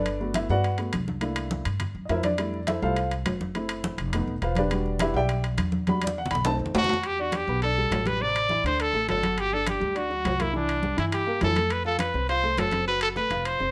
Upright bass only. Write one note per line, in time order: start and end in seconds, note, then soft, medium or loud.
0.00 0.44 G1 medium
0.49 0.90 G2 medium
0.94 1.61 C2 medium
1.66 1.93 G2 medium
1.95 2.08 F#2 medium
2.09 2.77 F2 medium
2.82 3.23 C2 loud
3.26 3.93 F#1 medium
3.98 4.25 F1 loud
4.27 4.41 F1 medium
4.42 5.09 E1 medium
5.14 5.55 B1 medium
5.58 6.25 E2 loud
6.31 6.58 B1 medium
6.59 6.73 D#2 medium
6.74 7.42 E2 medium
7.48 7.88 B1 medium
7.91 8.59 A1 medium
8.64 8.91 D2 medium
8.93 9.07 A1 medium
9.09 9.76 G1 medium
9.81 10.22 D2 loud
10.25 10.92 C2 medium
10.98 11.39 G2 medium
11.42 12.09 F2 medium
12.14 12.55 C2 medium
12.58 13.25 F#1 medium
13.30 13.58 F1 medium
13.60 13.71 F1 medium